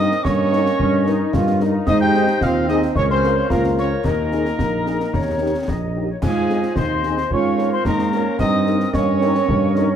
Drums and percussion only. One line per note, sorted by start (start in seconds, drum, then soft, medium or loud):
0.11 snare medium
0.25 concert bass drum medium
0.25 snare medium
0.53 snare medium
0.66 snare medium
0.80 concert bass drum medium
1.06 snare medium
1.33 concert bass drum medium
1.33 snare medium
1.47 snare medium
1.60 snare medium
1.87 concert bass drum medium
1.87 snare medium
1.87 crash soft
2.14 snare medium
2.27 snare medium
2.41 concert bass drum medium
2.41 snare medium
2.68 snare medium
2.82 snare medium
2.95 concert bass drum medium
3.23 snare medium
3.50 concert bass drum medium
3.50 snare medium
3.64 snare medium
3.77 snare medium
4.04 concert bass drum medium
4.04 snare medium
4.04 crash soft
4.32 snare medium
4.45 snare medium
4.59 concert bass drum medium
4.59 snare medium
4.86 snare medium
5.00 snare medium
5.13 concert bass drum medium
5.13 snare medium
5.68 concert bass drum medium
5.68 snare medium
6.22 concert bass drum medium
6.22 snare medium
6.22 crash medium
6.49 snare soft
6.63 snare medium
6.76 concert bass drum medium
6.76 snare medium
7.03 snare medium
7.17 snare medium
7.31 concert bass drum medium
7.58 snare medium
7.85 concert bass drum medium
7.85 snare medium
7.99 snare medium
8.12 snare medium
8.39 concert bass drum medium
8.39 snare medium
8.39 crash soft
8.66 snare soft
8.80 snare medium
8.94 concert bass drum medium
8.94 snare medium
9.21 snare medium
9.35 snare medium
9.48 concert bass drum medium
9.75 snare medium